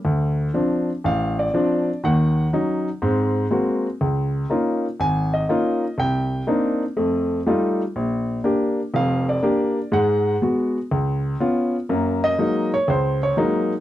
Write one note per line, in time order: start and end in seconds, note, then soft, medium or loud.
0.05 0.47 D2 medium
0.54 0.89 F3 medium
0.54 0.89 C4 medium
0.54 0.89 D4 medium
1.04 1.47 A1 medium
1.04 1.37 F5 medium
1.39 1.99 D5 medium
1.54 1.88 F3 medium
1.54 1.88 C4 medium
1.54 1.89 D4 medium
2.04 2.46 D#2 medium
2.04 2.46 D#3 medium
2.04 2.49 F#5 medium
2.53 2.87 F#3 medium
2.53 2.87 C#4 soft
2.53 2.88 D#4 medium
3.02 3.44 G#2 medium
3.02 3.45 C4 medium
3.51 3.86 G#3 medium
3.51 3.86 A#3 medium
3.51 3.86 C4 medium
3.51 3.86 F#4 medium
4.01 4.43 C#2 medium
4.50 4.85 A#3 medium
4.50 4.85 C#4 medium
4.50 4.85 D#4 soft
4.50 4.85 F4 medium
5.00 5.42 G#1 medium
5.00 5.32 G#5 medium
5.34 5.94 D#5 medium
5.49 5.84 A#3 medium
5.49 5.84 C#4 medium
5.49 5.84 D#4 soft
5.49 5.84 F4 medium
5.98 6.40 C2 medium
5.98 6.44 G5 medium
6.47 6.82 A#3 medium
6.47 6.82 C4 soft
6.47 6.82 D4 medium
6.47 6.82 D#4 medium
6.97 7.39 F2 medium
6.97 7.39 A3 medium
7.47 7.81 G3 medium
7.47 7.81 A3 medium
7.47 7.81 D#4 medium
7.47 7.81 F4 medium
7.96 8.38 A#1 medium
8.44 8.79 A#3 medium
8.44 8.79 D4 medium
8.44 8.79 G4 medium
8.94 9.36 F1 medium
8.94 9.36 F2 medium
8.94 9.27 F5 medium
9.29 9.89 D5 medium
9.43 9.78 A#3 medium
9.43 9.78 D4 medium
9.43 9.78 G4 medium
9.92 10.35 G#2 medium
9.92 10.34 G#3 medium
9.92 10.38 F#5 medium
10.42 10.76 G#3 medium
10.42 10.77 B3 medium
10.42 10.77 F#4 medium
10.91 11.34 C#2 medium
11.40 11.75 B3 medium
11.40 11.75 C#4 medium
11.40 11.75 F4 medium
11.89 12.32 F#2 medium
11.89 12.32 A#3 medium
12.24 12.69 D#5 medium
12.38 12.73 F#3 medium
12.38 12.73 G#3 soft
12.38 12.74 A#3 medium
12.38 12.74 D#4 medium
12.74 12.88 C#5 medium
12.88 13.30 C#2 medium
12.88 13.21 C5 medium
13.23 13.37 C#5 medium
13.37 13.72 F#3 medium
13.37 13.72 G#3 medium
13.37 13.72 A#3 medium
13.37 13.72 D#4 medium